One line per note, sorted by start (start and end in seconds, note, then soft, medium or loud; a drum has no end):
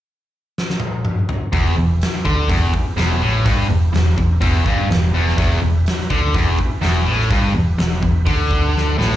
0.58 snare medium
0.70 snare medium
0.80 high tom medium
1.05 mid tom medium
1.29 floor tom medium
1.53 1.75 E1 medium
1.53 1.76 E2 loud
1.53 5.35 B3 medium
1.53 5.35 E4 medium
1.53 5.35 G4 medium
1.53 kick loud
1.53 open hi-hat medium
1.77 2.00 E1 medium
1.77 1.96 E2 medium
2.01 snare loud
2.01 open hi-hat medium
2.16 snare soft
2.25 2.48 D2 medium
2.25 2.48 D3 loud
2.25 kick medium
2.48 2.72 E1 medium
2.48 2.72 E2 loud
2.48 kick medium
2.48 open hi-hat medium
2.74 kick medium
2.97 3.20 E1 loud
2.97 3.21 E2 loud
2.97 snare loud
2.97 open hi-hat medium
3.21 3.44 A1 loud
3.21 3.45 A2 loud
3.45 3.68 G1 medium
3.45 3.69 G2 loud
3.45 kick loud
3.45 open hi-hat medium
3.69 3.92 E1 medium
3.69 3.89 E2 medium
3.93 4.16 E1 medium
3.93 4.13 E2 medium
3.93 snare loud
3.93 open hi-hat medium
4.18 4.40 E1 medium
4.18 4.37 E2 medium
4.18 kick medium
4.41 4.64 E1 medium
4.41 4.65 E2 loud
4.41 kick medium
4.41 open hi-hat medium
4.66 4.88 G1 loud
4.66 4.89 G2 loud
4.66 kick medium
4.89 5.12 E1 medium
4.89 5.09 E2 medium
4.89 snare loud
4.89 open hi-hat medium
5.14 5.37 E1 medium
5.14 5.37 E2 loud
5.28 snare soft
5.38 5.61 E1 medium
5.38 5.61 E2 loud
5.38 9.16 E4 medium
5.38 9.16 G4 medium
5.38 9.16 B4 medium
5.38 kick loud
5.38 open hi-hat medium
5.62 5.84 E1 medium
5.62 5.81 E2 medium
5.86 snare loud
5.86 open hi-hat medium
6.00 snare soft
6.10 6.33 D2 medium
6.10 6.34 D3 loud
6.10 kick medium
6.34 6.57 E1 medium
6.34 6.58 E2 loud
6.34 kick medium
6.34 open hi-hat medium
6.59 kick medium
6.82 7.05 E1 loud
6.82 7.06 E2 loud
6.82 snare loud
6.82 open hi-hat medium
7.06 7.29 A1 loud
7.06 7.30 A2 loud
7.21 snare soft
7.30 7.53 G1 medium
7.30 7.53 G2 loud
7.30 kick loud
7.30 open hi-hat medium
7.55 7.77 E1 medium
7.55 7.74 E2 medium
7.78 8.01 E1 medium
7.78 7.98 E2 medium
7.78 snare loud
7.78 open hi-hat medium
7.93 snare soft
8.02 8.25 E1 medium
8.02 8.22 E2 medium
8.02 kick medium
8.26 8.95 D2 medium
8.26 8.98 D3 loud
8.26 kick medium
8.26 open hi-hat medium
8.51 kick medium
8.77 snare medium
8.98 9.16 A1 medium
8.98 9.16 A2 medium
8.98 snare medium
9.13 snare medium